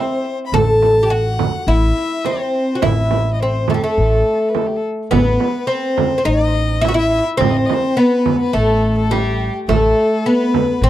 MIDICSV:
0, 0, Header, 1, 5, 480
1, 0, Start_track
1, 0, Tempo, 572519
1, 439, Time_signature, 4, 2, 24, 8
1, 9138, End_track
2, 0, Start_track
2, 0, Title_t, "Violin"
2, 0, Program_c, 0, 40
2, 0, Note_on_c, 0, 72, 69
2, 322, Note_off_c, 0, 72, 0
2, 388, Note_on_c, 0, 83, 63
2, 451, Note_on_c, 0, 81, 73
2, 464, Note_off_c, 0, 83, 0
2, 935, Note_on_c, 0, 78, 79
2, 948, Note_off_c, 0, 81, 0
2, 1417, Note_on_c, 0, 76, 79
2, 1429, Note_off_c, 0, 78, 0
2, 1890, Note_on_c, 0, 72, 75
2, 1903, Note_off_c, 0, 76, 0
2, 2373, Note_on_c, 0, 76, 68
2, 2386, Note_off_c, 0, 72, 0
2, 2791, Note_off_c, 0, 76, 0
2, 2795, Note_on_c, 0, 75, 44
2, 2847, Note_on_c, 0, 72, 65
2, 2860, Note_off_c, 0, 75, 0
2, 3107, Note_on_c, 0, 69, 61
2, 3120, Note_off_c, 0, 72, 0
2, 3207, Note_off_c, 0, 69, 0
2, 3212, Note_on_c, 0, 69, 59
2, 3760, Note_on_c, 0, 71, 50
2, 3772, Note_off_c, 0, 69, 0
2, 3826, Note_on_c, 0, 69, 47
2, 3839, Note_off_c, 0, 71, 0
2, 3911, Note_on_c, 0, 67, 41
2, 3923, Note_off_c, 0, 69, 0
2, 3989, Note_on_c, 0, 69, 46
2, 4001, Note_off_c, 0, 67, 0
2, 4057, Note_off_c, 0, 69, 0
2, 4293, Note_on_c, 0, 71, 77
2, 4779, Note_on_c, 0, 72, 75
2, 4791, Note_off_c, 0, 71, 0
2, 5263, Note_on_c, 0, 75, 86
2, 5276, Note_off_c, 0, 72, 0
2, 5740, Note_on_c, 0, 76, 84
2, 5752, Note_off_c, 0, 75, 0
2, 5846, Note_off_c, 0, 76, 0
2, 5851, Note_on_c, 0, 76, 82
2, 6073, Note_off_c, 0, 76, 0
2, 6219, Note_on_c, 0, 72, 66
2, 6282, Note_on_c, 0, 75, 68
2, 6294, Note_off_c, 0, 72, 0
2, 6342, Note_on_c, 0, 72, 67
2, 6355, Note_off_c, 0, 75, 0
2, 6416, Note_on_c, 0, 75, 72
2, 6428, Note_off_c, 0, 72, 0
2, 6487, Note_on_c, 0, 72, 91
2, 6500, Note_off_c, 0, 75, 0
2, 6694, Note_on_c, 0, 71, 79
2, 6706, Note_off_c, 0, 72, 0
2, 7040, Note_off_c, 0, 71, 0
2, 7045, Note_on_c, 0, 71, 77
2, 7165, Note_on_c, 0, 69, 78
2, 7178, Note_off_c, 0, 71, 0
2, 7522, Note_off_c, 0, 69, 0
2, 7527, Note_on_c, 0, 69, 72
2, 7644, Note_on_c, 0, 67, 73
2, 7657, Note_off_c, 0, 69, 0
2, 8002, Note_off_c, 0, 67, 0
2, 8122, Note_on_c, 0, 69, 71
2, 8596, Note_on_c, 0, 71, 82
2, 8609, Note_off_c, 0, 69, 0
2, 9074, Note_on_c, 0, 72, 80
2, 9087, Note_off_c, 0, 71, 0
2, 9138, Note_off_c, 0, 72, 0
2, 9138, End_track
3, 0, Start_track
3, 0, Title_t, "Oud"
3, 0, Program_c, 1, 24
3, 0, Note_on_c, 1, 60, 72
3, 297, Note_off_c, 1, 60, 0
3, 451, Note_on_c, 1, 69, 97
3, 858, Note_off_c, 1, 69, 0
3, 861, Note_on_c, 1, 67, 64
3, 921, Note_off_c, 1, 67, 0
3, 924, Note_on_c, 1, 66, 85
3, 1404, Note_off_c, 1, 66, 0
3, 1407, Note_on_c, 1, 64, 87
3, 1892, Note_on_c, 1, 60, 77
3, 1901, Note_off_c, 1, 64, 0
3, 2308, Note_on_c, 1, 66, 61
3, 2323, Note_off_c, 1, 60, 0
3, 2365, Note_off_c, 1, 66, 0
3, 2368, Note_on_c, 1, 64, 88
3, 2862, Note_off_c, 1, 64, 0
3, 2871, Note_on_c, 1, 60, 68
3, 3100, Note_on_c, 1, 57, 67
3, 3106, Note_off_c, 1, 60, 0
3, 3134, Note_off_c, 1, 57, 0
3, 3137, Note_on_c, 1, 55, 57
3, 3200, Note_off_c, 1, 55, 0
3, 3216, Note_on_c, 1, 57, 66
3, 4020, Note_off_c, 1, 57, 0
3, 4284, Note_on_c, 1, 59, 92
3, 4752, Note_off_c, 1, 59, 0
3, 4755, Note_on_c, 1, 60, 82
3, 5171, Note_off_c, 1, 60, 0
3, 5181, Note_on_c, 1, 60, 69
3, 5238, Note_off_c, 1, 60, 0
3, 5241, Note_on_c, 1, 63, 99
3, 5690, Note_off_c, 1, 63, 0
3, 5713, Note_on_c, 1, 64, 97
3, 5768, Note_off_c, 1, 64, 0
3, 5772, Note_on_c, 1, 66, 81
3, 5817, Note_off_c, 1, 66, 0
3, 5820, Note_on_c, 1, 64, 97
3, 6056, Note_off_c, 1, 64, 0
3, 6182, Note_on_c, 1, 60, 101
3, 6677, Note_off_c, 1, 60, 0
3, 6680, Note_on_c, 1, 59, 86
3, 7151, Note_off_c, 1, 59, 0
3, 7154, Note_on_c, 1, 57, 93
3, 7635, Note_off_c, 1, 57, 0
3, 7639, Note_on_c, 1, 55, 87
3, 7974, Note_off_c, 1, 55, 0
3, 8123, Note_on_c, 1, 57, 87
3, 8599, Note_off_c, 1, 57, 0
3, 8602, Note_on_c, 1, 59, 79
3, 9084, Note_on_c, 1, 60, 93
3, 9093, Note_off_c, 1, 59, 0
3, 9136, Note_off_c, 1, 60, 0
3, 9138, End_track
4, 0, Start_track
4, 0, Title_t, "Upright bass"
4, 0, Program_c, 2, 32
4, 438, Note_on_c, 2, 33, 85
4, 1223, Note_off_c, 2, 33, 0
4, 1398, Note_on_c, 2, 33, 90
4, 1596, Note_off_c, 2, 33, 0
4, 2368, Note_on_c, 2, 33, 87
4, 3151, Note_off_c, 2, 33, 0
4, 3333, Note_on_c, 2, 33, 85
4, 3526, Note_off_c, 2, 33, 0
4, 4292, Note_on_c, 2, 33, 84
4, 4486, Note_off_c, 2, 33, 0
4, 5244, Note_on_c, 2, 33, 77
4, 6026, Note_off_c, 2, 33, 0
4, 6198, Note_on_c, 2, 33, 82
4, 6396, Note_off_c, 2, 33, 0
4, 7163, Note_on_c, 2, 33, 87
4, 7943, Note_off_c, 2, 33, 0
4, 8118, Note_on_c, 2, 33, 77
4, 8314, Note_off_c, 2, 33, 0
4, 9067, Note_on_c, 2, 33, 94
4, 9138, Note_off_c, 2, 33, 0
4, 9138, End_track
5, 0, Start_track
5, 0, Title_t, "Frame drum"
5, 450, Note_on_c, 9, 64, 83
5, 533, Note_off_c, 9, 64, 0
5, 691, Note_on_c, 9, 64, 59
5, 775, Note_off_c, 9, 64, 0
5, 1166, Note_on_c, 9, 64, 72
5, 1250, Note_off_c, 9, 64, 0
5, 1882, Note_on_c, 9, 64, 52
5, 1966, Note_off_c, 9, 64, 0
5, 2364, Note_on_c, 9, 64, 79
5, 2448, Note_off_c, 9, 64, 0
5, 2605, Note_on_c, 9, 64, 57
5, 2689, Note_off_c, 9, 64, 0
5, 3084, Note_on_c, 9, 64, 76
5, 3168, Note_off_c, 9, 64, 0
5, 3812, Note_on_c, 9, 64, 64
5, 3896, Note_off_c, 9, 64, 0
5, 4290, Note_on_c, 9, 64, 85
5, 4374, Note_off_c, 9, 64, 0
5, 4528, Note_on_c, 9, 64, 58
5, 4612, Note_off_c, 9, 64, 0
5, 5010, Note_on_c, 9, 64, 81
5, 5094, Note_off_c, 9, 64, 0
5, 5739, Note_on_c, 9, 64, 62
5, 5823, Note_off_c, 9, 64, 0
5, 6209, Note_on_c, 9, 64, 94
5, 6293, Note_off_c, 9, 64, 0
5, 6453, Note_on_c, 9, 64, 72
5, 6537, Note_off_c, 9, 64, 0
5, 6923, Note_on_c, 9, 64, 77
5, 7007, Note_off_c, 9, 64, 0
5, 7649, Note_on_c, 9, 64, 57
5, 7732, Note_off_c, 9, 64, 0
5, 8126, Note_on_c, 9, 64, 79
5, 8209, Note_off_c, 9, 64, 0
5, 8839, Note_on_c, 9, 64, 82
5, 8923, Note_off_c, 9, 64, 0
5, 9138, End_track
0, 0, End_of_file